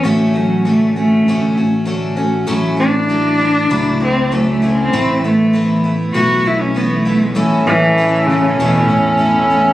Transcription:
X:1
M:4/4
L:1/16
Q:1/4=98
K:A
V:1 name="Harmonium"
z16 | z16 | z16 | [EAca]16 |]
V:2 name="Fiddle"
z16 | z16 | z16 | C16 |]
V:3 name="Twelve-string acoustic guitar"
[A,,D,A,CF]2 [A,CF]2 [D,A,CF]2 [A,CF]2 [A,,D,A,CF]2 [A,CF]2 [D,A,CF]2 [A,CF]2 | [A,,F,A,CE]2 [A,E]2 [F,A,E]2 [A,E]2 [A,,F,A,E]2 [A,E]2 [F,A,CE]2 [A,CE]2 | [A,,E,A,E]2 [A,B,E]2 [E,A,B,E]2 [A,B,E]2 [A,,E,A,B,E]2 [A,B,E]2 [E,A,B,E]2 [A,B,E]2 | [A,,E,A,CE]2 [A,CE]2 [E,A,CE]2 [A,CE]2 [A,,E,A,CE]2 [A,CE]2 [E,A,CE]2 [A,CE]2 |]
V:4 name="Cello"
A,2 F,2 A,2 A,4 z6 | z2 D8 =C2 A, A,2 C- | =C2 A,4 z2 F2 E ^C B, A, A,2 | z2 E,4 C,2 B,,2 A,,4 z2 |]
V:5 name="Fingered electric bass" clef=bass
A,,,8 A,,,8 | A,,,8 C,,8 | A,,,8 B,,,8 | A,,,2 A,,,6 E,,8 |]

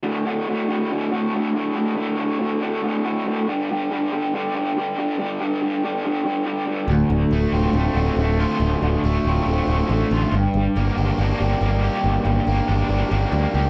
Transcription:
X:1
M:4/4
L:1/8
Q:1/4=140
K:Dm
V:1 name="Overdriven electric guitar"
z8 | z8 | z8 | z8 |
D,,2 A, F C A, D, A, | D,,2 A, F C A, D, A, | G,,2 B, G D B, G, B, | G,,2 B, G D B, G, B, |]
V:2 name="Overdriven electric guitar" clef=bass
[D,,A,,D,] [D,,A,,D,] [D,,A,,D,] [D,,A,,D,] [D,,A,,D,] [D,,A,,D,] [D,,A,,D,] [D,,A,,D,] | [D,,A,,D,] [D,,A,,D,] [D,,A,,D,] [D,,A,,D,] [D,,A,,D,] [D,,A,,D,] [D,,A,,D,] [D,,A,,D,] | [G,,D,G,] [G,,D,G,] [G,,D,G,] [G,,D,G,] [G,,D,G,] [G,,D,G,] [G,,D,G,] [G,,D,G,] | [G,,D,G,] [G,,D,G,] [G,,D,G,] [G,,D,G,] [G,,D,G,] [G,,D,G,] [G,,D,G,] [G,,D,G,] |
D,, D, A, C A, D, A, F | D,, D, A, C A, D, A, F | G,, G, B, D B, G, B, G | G,, G, B, D B, G, B, G |]
V:3 name="Picked electric bass" clef=bass
z8 | z8 | z8 | z8 |
D,,, D,,, D,,, D,,, D,,, D,,, D,,,2 | D,,, D,,, D,,, D,,, D,,, D,,, A,,, A,,, | G,,, G,,, G,,, G,,, G,,, G,,, G,,,2 | G,,, G,,, G,,, G,,, G,,, G,,, D,, ^C,, |]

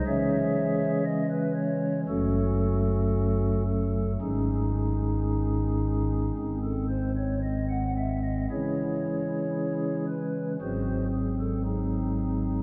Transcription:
X:1
M:4/4
L:1/16
Q:1/4=57
K:C#m
V:1 name="Pipe organ"
[Gce]4 d B c2 [CFA]6 A2 | [CDG]8- [CDG] A ^B c d f e d | [EGc]6 B2 [FG^B]2 G A [^B,DG]4 |]
V:2 name="Pipe organ" clef=bass
[C,E,G,C]8 [F,,,F,,F,A,]8 | [G,,,G,,D,G,]8 [G,,,G,,D,G,^B,]8 | [C,E,G,C]8 [G,,,G,,F,G,^B,]8 |]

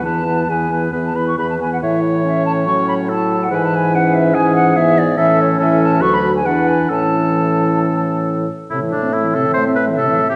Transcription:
X:1
M:4/4
L:1/16
Q:1/4=141
K:A
V:1 name="Flute"
a4 g4- g a b c' b a g f | e2 c2 e2 a2 c'2 b2 a3 f | g a g2 f2 e2 g2 f2 e2 d2 | e2 c2 e2 a2 c' b2 g f2 g2 |
a12 z4 | [K:Am] e16 |]
V:2 name="Oboe"
B2 B2 B2 B2 B2 B2 B2 B2 | c12 A4 | B4 B4 G4 G4 | A4 A4 B4 B4 |
A12- A2 z2 | [K:Am] E2 D2 E2 A2 c2 B2 A3 G |]
V:3 name="Clarinet"
B,2 B,2 B,2 B,2 B,2 B,2 B,2 B,2 | E4 C4 C4 E4 | E4 C8 B,4 | C4 C4 D4 D4 |
C12- C2 z2 | [K:Am] A,4 C12 |]
V:4 name="French horn" clef=bass
E,2 E,2 E,2 E,2 E,2 E,2 E,2 E,2 | E,8 F,8 | E,8 E,4 E,4 | E,4 E,4 F,4 E,4 |
E,12- E,2 z2 | [K:Am] C, E, A, C A, E, C, E, A, C A, E, C, E, A, C |]
V:5 name="Bassoon" clef=bass
E,,4 E,,4 E,,4 E,,4 | A,,16 | G,,16 | A,,8 D,,4 E,,4 |
A,,12- A,,2 z2 | [K:Am] A,,16 |]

